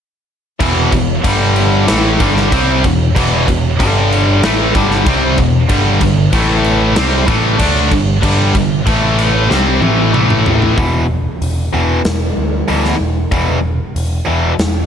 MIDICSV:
0, 0, Header, 1, 4, 480
1, 0, Start_track
1, 0, Key_signature, 1, "minor"
1, 0, Tempo, 635593
1, 458, Time_signature, 4, 2, 24, 8
1, 11222, End_track
2, 0, Start_track
2, 0, Title_t, "Distorted electric guitar"
2, 0, Program_c, 0, 30
2, 450, Note_on_c, 0, 40, 95
2, 458, Note_on_c, 0, 47, 103
2, 461, Note_on_c, 0, 52, 107
2, 688, Note_off_c, 0, 40, 0
2, 691, Note_off_c, 0, 47, 0
2, 693, Note_off_c, 0, 52, 0
2, 700, Note_on_c, 0, 40, 53
2, 702, Note_on_c, 0, 47, 58
2, 892, Note_off_c, 0, 40, 0
2, 893, Note_off_c, 0, 47, 0
2, 936, Note_on_c, 0, 43, 83
2, 941, Note_on_c, 0, 50, 88
2, 942, Note_on_c, 0, 55, 97
2, 1412, Note_off_c, 0, 43, 0
2, 1412, Note_off_c, 0, 50, 0
2, 1415, Note_off_c, 0, 55, 0
2, 1415, Note_on_c, 0, 45, 84
2, 1420, Note_on_c, 0, 52, 94
2, 1423, Note_on_c, 0, 57, 97
2, 1652, Note_off_c, 0, 45, 0
2, 1654, Note_off_c, 0, 52, 0
2, 1655, Note_off_c, 0, 57, 0
2, 1661, Note_on_c, 0, 43, 94
2, 1661, Note_on_c, 0, 50, 81
2, 1667, Note_on_c, 0, 55, 96
2, 1895, Note_off_c, 0, 43, 0
2, 1895, Note_off_c, 0, 50, 0
2, 1898, Note_off_c, 0, 55, 0
2, 1900, Note_on_c, 0, 48, 84
2, 1907, Note_on_c, 0, 55, 84
2, 1910, Note_on_c, 0, 60, 89
2, 2135, Note_off_c, 0, 48, 0
2, 2138, Note_off_c, 0, 55, 0
2, 2140, Note_off_c, 0, 60, 0
2, 2145, Note_on_c, 0, 40, 61
2, 2148, Note_on_c, 0, 47, 69
2, 2337, Note_off_c, 0, 40, 0
2, 2338, Note_off_c, 0, 47, 0
2, 2380, Note_on_c, 0, 40, 96
2, 2384, Note_on_c, 0, 47, 101
2, 2386, Note_on_c, 0, 52, 107
2, 2612, Note_off_c, 0, 40, 0
2, 2613, Note_off_c, 0, 47, 0
2, 2618, Note_off_c, 0, 52, 0
2, 2621, Note_on_c, 0, 40, 54
2, 2623, Note_on_c, 0, 47, 67
2, 2815, Note_off_c, 0, 40, 0
2, 2816, Note_off_c, 0, 47, 0
2, 2864, Note_on_c, 0, 43, 91
2, 2870, Note_on_c, 0, 50, 92
2, 2875, Note_on_c, 0, 55, 100
2, 3338, Note_off_c, 0, 43, 0
2, 3341, Note_off_c, 0, 50, 0
2, 3343, Note_off_c, 0, 55, 0
2, 3349, Note_on_c, 0, 45, 79
2, 3353, Note_on_c, 0, 52, 88
2, 3356, Note_on_c, 0, 57, 89
2, 3580, Note_off_c, 0, 45, 0
2, 3582, Note_off_c, 0, 52, 0
2, 3582, Note_on_c, 0, 43, 93
2, 3584, Note_off_c, 0, 57, 0
2, 3588, Note_on_c, 0, 50, 95
2, 3590, Note_on_c, 0, 55, 95
2, 3817, Note_off_c, 0, 43, 0
2, 3817, Note_off_c, 0, 50, 0
2, 3820, Note_off_c, 0, 55, 0
2, 3820, Note_on_c, 0, 48, 74
2, 3829, Note_on_c, 0, 55, 78
2, 3832, Note_on_c, 0, 60, 98
2, 4056, Note_off_c, 0, 48, 0
2, 4060, Note_off_c, 0, 55, 0
2, 4061, Note_off_c, 0, 60, 0
2, 4064, Note_on_c, 0, 40, 63
2, 4068, Note_on_c, 0, 47, 74
2, 4257, Note_off_c, 0, 40, 0
2, 4259, Note_off_c, 0, 47, 0
2, 4295, Note_on_c, 0, 43, 105
2, 4300, Note_on_c, 0, 50, 109
2, 4305, Note_on_c, 0, 55, 108
2, 4531, Note_off_c, 0, 43, 0
2, 4536, Note_off_c, 0, 50, 0
2, 4538, Note_off_c, 0, 55, 0
2, 4540, Note_on_c, 0, 43, 61
2, 4544, Note_on_c, 0, 50, 59
2, 4735, Note_off_c, 0, 43, 0
2, 4736, Note_off_c, 0, 50, 0
2, 4781, Note_on_c, 0, 45, 88
2, 4786, Note_on_c, 0, 52, 90
2, 4789, Note_on_c, 0, 57, 96
2, 5250, Note_off_c, 0, 45, 0
2, 5253, Note_on_c, 0, 48, 92
2, 5255, Note_off_c, 0, 52, 0
2, 5258, Note_off_c, 0, 57, 0
2, 5258, Note_on_c, 0, 55, 90
2, 5261, Note_on_c, 0, 60, 107
2, 5481, Note_off_c, 0, 48, 0
2, 5484, Note_on_c, 0, 45, 102
2, 5486, Note_off_c, 0, 55, 0
2, 5489, Note_off_c, 0, 60, 0
2, 5489, Note_on_c, 0, 52, 104
2, 5492, Note_on_c, 0, 57, 99
2, 5720, Note_off_c, 0, 45, 0
2, 5723, Note_off_c, 0, 57, 0
2, 5723, Note_on_c, 0, 50, 84
2, 5729, Note_off_c, 0, 52, 0
2, 5732, Note_on_c, 0, 57, 93
2, 5733, Note_on_c, 0, 62, 95
2, 5966, Note_off_c, 0, 50, 0
2, 5970, Note_off_c, 0, 57, 0
2, 5971, Note_off_c, 0, 62, 0
2, 5974, Note_on_c, 0, 43, 60
2, 5977, Note_on_c, 0, 50, 76
2, 6170, Note_off_c, 0, 43, 0
2, 6172, Note_off_c, 0, 50, 0
2, 6210, Note_on_c, 0, 43, 109
2, 6217, Note_on_c, 0, 50, 105
2, 6219, Note_on_c, 0, 55, 104
2, 6440, Note_off_c, 0, 43, 0
2, 6446, Note_off_c, 0, 50, 0
2, 6449, Note_on_c, 0, 43, 58
2, 6453, Note_off_c, 0, 55, 0
2, 6455, Note_on_c, 0, 50, 62
2, 6648, Note_off_c, 0, 43, 0
2, 6651, Note_off_c, 0, 50, 0
2, 6692, Note_on_c, 0, 45, 86
2, 6697, Note_on_c, 0, 52, 90
2, 6701, Note_on_c, 0, 57, 98
2, 7166, Note_off_c, 0, 45, 0
2, 7169, Note_on_c, 0, 48, 87
2, 7170, Note_off_c, 0, 52, 0
2, 7173, Note_on_c, 0, 55, 91
2, 7174, Note_off_c, 0, 57, 0
2, 7177, Note_on_c, 0, 60, 89
2, 7405, Note_off_c, 0, 48, 0
2, 7408, Note_on_c, 0, 45, 93
2, 7409, Note_off_c, 0, 55, 0
2, 7412, Note_off_c, 0, 60, 0
2, 7414, Note_on_c, 0, 52, 109
2, 7416, Note_on_c, 0, 57, 99
2, 7640, Note_off_c, 0, 45, 0
2, 7642, Note_off_c, 0, 52, 0
2, 7646, Note_off_c, 0, 57, 0
2, 7649, Note_on_c, 0, 45, 81
2, 7651, Note_on_c, 0, 52, 92
2, 7655, Note_on_c, 0, 57, 96
2, 8127, Note_off_c, 0, 45, 0
2, 8128, Note_off_c, 0, 52, 0
2, 8130, Note_off_c, 0, 57, 0
2, 8136, Note_on_c, 0, 40, 89
2, 8144, Note_on_c, 0, 47, 97
2, 8144, Note_on_c, 0, 52, 86
2, 8329, Note_off_c, 0, 40, 0
2, 8333, Note_off_c, 0, 47, 0
2, 8334, Note_off_c, 0, 52, 0
2, 8858, Note_on_c, 0, 40, 64
2, 8864, Note_on_c, 0, 47, 80
2, 8865, Note_on_c, 0, 52, 81
2, 9050, Note_off_c, 0, 40, 0
2, 9053, Note_off_c, 0, 47, 0
2, 9054, Note_off_c, 0, 52, 0
2, 9579, Note_on_c, 0, 40, 81
2, 9584, Note_on_c, 0, 47, 76
2, 9587, Note_on_c, 0, 52, 81
2, 9771, Note_off_c, 0, 40, 0
2, 9773, Note_off_c, 0, 47, 0
2, 9775, Note_off_c, 0, 52, 0
2, 10057, Note_on_c, 0, 40, 94
2, 10062, Note_on_c, 0, 47, 84
2, 10063, Note_on_c, 0, 52, 95
2, 10250, Note_off_c, 0, 40, 0
2, 10252, Note_off_c, 0, 47, 0
2, 10253, Note_off_c, 0, 52, 0
2, 10776, Note_on_c, 0, 40, 82
2, 10782, Note_on_c, 0, 52, 97
2, 10783, Note_on_c, 0, 47, 76
2, 10970, Note_off_c, 0, 40, 0
2, 10973, Note_off_c, 0, 52, 0
2, 10974, Note_off_c, 0, 47, 0
2, 11222, End_track
3, 0, Start_track
3, 0, Title_t, "Picked electric bass"
3, 0, Program_c, 1, 34
3, 458, Note_on_c, 1, 28, 87
3, 682, Note_off_c, 1, 28, 0
3, 700, Note_on_c, 1, 28, 73
3, 924, Note_off_c, 1, 28, 0
3, 943, Note_on_c, 1, 31, 84
3, 1393, Note_off_c, 1, 31, 0
3, 1425, Note_on_c, 1, 33, 92
3, 1647, Note_off_c, 1, 33, 0
3, 1662, Note_on_c, 1, 31, 87
3, 1886, Note_off_c, 1, 31, 0
3, 1906, Note_on_c, 1, 36, 100
3, 2128, Note_off_c, 1, 36, 0
3, 2145, Note_on_c, 1, 28, 76
3, 2368, Note_off_c, 1, 28, 0
3, 2388, Note_on_c, 1, 28, 87
3, 2609, Note_off_c, 1, 28, 0
3, 2628, Note_on_c, 1, 28, 82
3, 2850, Note_off_c, 1, 28, 0
3, 2867, Note_on_c, 1, 31, 94
3, 3316, Note_off_c, 1, 31, 0
3, 3350, Note_on_c, 1, 33, 85
3, 3571, Note_off_c, 1, 33, 0
3, 3585, Note_on_c, 1, 31, 100
3, 3808, Note_off_c, 1, 31, 0
3, 3827, Note_on_c, 1, 36, 96
3, 4050, Note_off_c, 1, 36, 0
3, 4062, Note_on_c, 1, 28, 78
3, 4287, Note_off_c, 1, 28, 0
3, 4303, Note_on_c, 1, 31, 77
3, 4527, Note_off_c, 1, 31, 0
3, 4538, Note_on_c, 1, 31, 73
3, 4765, Note_off_c, 1, 31, 0
3, 4781, Note_on_c, 1, 33, 88
3, 5232, Note_off_c, 1, 33, 0
3, 5272, Note_on_c, 1, 36, 103
3, 5491, Note_off_c, 1, 36, 0
3, 5499, Note_on_c, 1, 33, 99
3, 5724, Note_off_c, 1, 33, 0
3, 5735, Note_on_c, 1, 38, 86
3, 5962, Note_off_c, 1, 38, 0
3, 5976, Note_on_c, 1, 31, 77
3, 6202, Note_off_c, 1, 31, 0
3, 6216, Note_on_c, 1, 31, 88
3, 6442, Note_off_c, 1, 31, 0
3, 6459, Note_on_c, 1, 31, 78
3, 6683, Note_off_c, 1, 31, 0
3, 6698, Note_on_c, 1, 33, 96
3, 7149, Note_off_c, 1, 33, 0
3, 7181, Note_on_c, 1, 36, 91
3, 7404, Note_off_c, 1, 36, 0
3, 7417, Note_on_c, 1, 33, 96
3, 7642, Note_off_c, 1, 33, 0
3, 7659, Note_on_c, 1, 33, 95
3, 8109, Note_off_c, 1, 33, 0
3, 8142, Note_on_c, 1, 28, 77
3, 8488, Note_off_c, 1, 28, 0
3, 8622, Note_on_c, 1, 28, 75
3, 8794, Note_off_c, 1, 28, 0
3, 8866, Note_on_c, 1, 28, 78
3, 9037, Note_off_c, 1, 28, 0
3, 9104, Note_on_c, 1, 28, 78
3, 9276, Note_off_c, 1, 28, 0
3, 9348, Note_on_c, 1, 38, 77
3, 9518, Note_off_c, 1, 38, 0
3, 9589, Note_on_c, 1, 38, 80
3, 9759, Note_off_c, 1, 38, 0
3, 9824, Note_on_c, 1, 28, 78
3, 9995, Note_off_c, 1, 28, 0
3, 10059, Note_on_c, 1, 28, 78
3, 10407, Note_off_c, 1, 28, 0
3, 10541, Note_on_c, 1, 28, 72
3, 10714, Note_off_c, 1, 28, 0
3, 10785, Note_on_c, 1, 28, 79
3, 10957, Note_off_c, 1, 28, 0
3, 11019, Note_on_c, 1, 28, 83
3, 11193, Note_off_c, 1, 28, 0
3, 11222, End_track
4, 0, Start_track
4, 0, Title_t, "Drums"
4, 458, Note_on_c, 9, 36, 103
4, 458, Note_on_c, 9, 49, 76
4, 533, Note_off_c, 9, 36, 0
4, 533, Note_off_c, 9, 49, 0
4, 697, Note_on_c, 9, 49, 60
4, 698, Note_on_c, 9, 36, 88
4, 773, Note_off_c, 9, 49, 0
4, 774, Note_off_c, 9, 36, 0
4, 940, Note_on_c, 9, 36, 102
4, 940, Note_on_c, 9, 49, 83
4, 1015, Note_off_c, 9, 36, 0
4, 1016, Note_off_c, 9, 49, 0
4, 1178, Note_on_c, 9, 49, 56
4, 1253, Note_off_c, 9, 49, 0
4, 1420, Note_on_c, 9, 49, 82
4, 1423, Note_on_c, 9, 38, 109
4, 1496, Note_off_c, 9, 49, 0
4, 1499, Note_off_c, 9, 38, 0
4, 1661, Note_on_c, 9, 49, 68
4, 1663, Note_on_c, 9, 36, 98
4, 1736, Note_off_c, 9, 49, 0
4, 1739, Note_off_c, 9, 36, 0
4, 1788, Note_on_c, 9, 38, 32
4, 1863, Note_off_c, 9, 38, 0
4, 1905, Note_on_c, 9, 36, 111
4, 1907, Note_on_c, 9, 49, 78
4, 1981, Note_off_c, 9, 36, 0
4, 1983, Note_off_c, 9, 49, 0
4, 2147, Note_on_c, 9, 36, 91
4, 2148, Note_on_c, 9, 49, 57
4, 2222, Note_off_c, 9, 36, 0
4, 2224, Note_off_c, 9, 49, 0
4, 2388, Note_on_c, 9, 36, 101
4, 2393, Note_on_c, 9, 49, 81
4, 2464, Note_off_c, 9, 36, 0
4, 2468, Note_off_c, 9, 49, 0
4, 2628, Note_on_c, 9, 36, 90
4, 2633, Note_on_c, 9, 49, 56
4, 2704, Note_off_c, 9, 36, 0
4, 2708, Note_off_c, 9, 49, 0
4, 2870, Note_on_c, 9, 36, 102
4, 2875, Note_on_c, 9, 49, 80
4, 2945, Note_off_c, 9, 36, 0
4, 2950, Note_off_c, 9, 49, 0
4, 3115, Note_on_c, 9, 49, 47
4, 3191, Note_off_c, 9, 49, 0
4, 3348, Note_on_c, 9, 49, 75
4, 3351, Note_on_c, 9, 38, 111
4, 3423, Note_off_c, 9, 49, 0
4, 3426, Note_off_c, 9, 38, 0
4, 3587, Note_on_c, 9, 36, 100
4, 3587, Note_on_c, 9, 49, 55
4, 3662, Note_off_c, 9, 36, 0
4, 3662, Note_off_c, 9, 49, 0
4, 3708, Note_on_c, 9, 38, 31
4, 3783, Note_off_c, 9, 38, 0
4, 3824, Note_on_c, 9, 49, 72
4, 3825, Note_on_c, 9, 36, 111
4, 3899, Note_off_c, 9, 49, 0
4, 3900, Note_off_c, 9, 36, 0
4, 4060, Note_on_c, 9, 49, 51
4, 4064, Note_on_c, 9, 36, 92
4, 4135, Note_off_c, 9, 49, 0
4, 4139, Note_off_c, 9, 36, 0
4, 4299, Note_on_c, 9, 49, 72
4, 4303, Note_on_c, 9, 36, 101
4, 4374, Note_off_c, 9, 49, 0
4, 4378, Note_off_c, 9, 36, 0
4, 4537, Note_on_c, 9, 49, 61
4, 4541, Note_on_c, 9, 36, 87
4, 4612, Note_off_c, 9, 49, 0
4, 4617, Note_off_c, 9, 36, 0
4, 4777, Note_on_c, 9, 49, 78
4, 4780, Note_on_c, 9, 36, 109
4, 4853, Note_off_c, 9, 49, 0
4, 4856, Note_off_c, 9, 36, 0
4, 5017, Note_on_c, 9, 49, 49
4, 5093, Note_off_c, 9, 49, 0
4, 5256, Note_on_c, 9, 49, 85
4, 5259, Note_on_c, 9, 38, 115
4, 5332, Note_off_c, 9, 49, 0
4, 5335, Note_off_c, 9, 38, 0
4, 5497, Note_on_c, 9, 49, 66
4, 5498, Note_on_c, 9, 36, 119
4, 5572, Note_off_c, 9, 49, 0
4, 5574, Note_off_c, 9, 36, 0
4, 5735, Note_on_c, 9, 49, 91
4, 5737, Note_on_c, 9, 36, 106
4, 5811, Note_off_c, 9, 49, 0
4, 5812, Note_off_c, 9, 36, 0
4, 5977, Note_on_c, 9, 36, 95
4, 5978, Note_on_c, 9, 49, 65
4, 6053, Note_off_c, 9, 36, 0
4, 6053, Note_off_c, 9, 49, 0
4, 6217, Note_on_c, 9, 36, 106
4, 6220, Note_on_c, 9, 49, 80
4, 6292, Note_off_c, 9, 36, 0
4, 6295, Note_off_c, 9, 49, 0
4, 6457, Note_on_c, 9, 36, 83
4, 6458, Note_on_c, 9, 49, 57
4, 6532, Note_off_c, 9, 36, 0
4, 6534, Note_off_c, 9, 49, 0
4, 6697, Note_on_c, 9, 36, 96
4, 6697, Note_on_c, 9, 49, 72
4, 6772, Note_off_c, 9, 36, 0
4, 6773, Note_off_c, 9, 49, 0
4, 6937, Note_on_c, 9, 49, 52
4, 7013, Note_off_c, 9, 49, 0
4, 7182, Note_on_c, 9, 38, 64
4, 7258, Note_off_c, 9, 38, 0
4, 7419, Note_on_c, 9, 48, 74
4, 7495, Note_off_c, 9, 48, 0
4, 7660, Note_on_c, 9, 47, 83
4, 7735, Note_off_c, 9, 47, 0
4, 7781, Note_on_c, 9, 45, 82
4, 7857, Note_off_c, 9, 45, 0
4, 7900, Note_on_c, 9, 43, 105
4, 7976, Note_off_c, 9, 43, 0
4, 8022, Note_on_c, 9, 43, 82
4, 8098, Note_off_c, 9, 43, 0
4, 8139, Note_on_c, 9, 36, 97
4, 8141, Note_on_c, 9, 46, 45
4, 8214, Note_off_c, 9, 36, 0
4, 8217, Note_off_c, 9, 46, 0
4, 8623, Note_on_c, 9, 46, 49
4, 8699, Note_off_c, 9, 46, 0
4, 9099, Note_on_c, 9, 46, 48
4, 9102, Note_on_c, 9, 38, 102
4, 9174, Note_off_c, 9, 46, 0
4, 9177, Note_off_c, 9, 38, 0
4, 9576, Note_on_c, 9, 46, 47
4, 9652, Note_off_c, 9, 46, 0
4, 9704, Note_on_c, 9, 38, 30
4, 9779, Note_off_c, 9, 38, 0
4, 10057, Note_on_c, 9, 46, 47
4, 10059, Note_on_c, 9, 36, 94
4, 10133, Note_off_c, 9, 46, 0
4, 10134, Note_off_c, 9, 36, 0
4, 10544, Note_on_c, 9, 46, 49
4, 10619, Note_off_c, 9, 46, 0
4, 11019, Note_on_c, 9, 46, 48
4, 11022, Note_on_c, 9, 38, 101
4, 11095, Note_off_c, 9, 46, 0
4, 11098, Note_off_c, 9, 38, 0
4, 11222, End_track
0, 0, End_of_file